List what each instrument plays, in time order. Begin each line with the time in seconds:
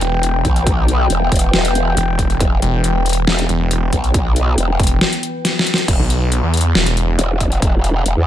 Already playing: ambient pad E3 B3 B4 G5
0.01 detuned saw bass E1, closed hi-hat
0.23 closed hi-hat
0.45 wobble bass B1, kick, closed hi-hat
0.56 closed hi-hat
0.67 kick, closed hi-hat
0.88 closed hi-hat
1.10 wobble bass E1, closed hi-hat
1.32 wobble bass E1, kick, closed hi-hat
1.36 closed hi-hat
1.39 closed hi-hat
1.54 snare
1.65 closed hi-hat
1.75 closed hi-hat
1.97 detuned saw bass E1, closed hi-hat
2.19 kick, closed hi-hat
2.30 closed hi-hat
2.40 wobble bass E1, kick, closed hi-hat
2.62 detuned saw bass E1, closed hi-hat
2.84 detuned saw bass E1, closed hi-hat
3.06 closed hi-hat
3.09 closed hi-hat
3.13 closed hi-hat
3.27 wobble bass E1, snare
3.39 closed hi-hat
3.49 detuned saw bass E1, closed hi-hat
3.71 closed hi-hat
3.93 wobble bass B1, kick, closed hi-hat
4.04 closed hi-hat
4.14 kick, closed hi-hat
4.36 closed hi-hat
4.58 wobble bass E1, closed hi-hat
4.80 detuned saw bass E1, kick, closed hi-hat
4.83 closed hi-hat
4.87 closed hi-hat
5.01 snare
5.13 closed hi-hat
5.23 closed hi-hat
5.45 snare, closed hi-hat
5.59 snare
5.67 closed hi-hat
5.74 snare, closed hi-hat
5.88 wobble bass E1, kick, closed hi-hat, crash
6.00 detuned saw bass B1
6.10 closed hi-hat
6.32 closed hi-hat
6.43 detuned saw bass E2
6.54 closed hi-hat
6.57 closed hi-hat
6.61 closed hi-hat
6.75 detuned saw bass E1, snare
6.86 closed hi-hat
6.97 closed hi-hat
7.19 wobble bass E1, closed hi-hat
7.40 kick, closed hi-hat
7.52 closed hi-hat
7.62 kick, closed hi-hat
7.84 closed hi-hat
8.06 wobble bass E1, closed hi-hat
8.17 wobble bass E2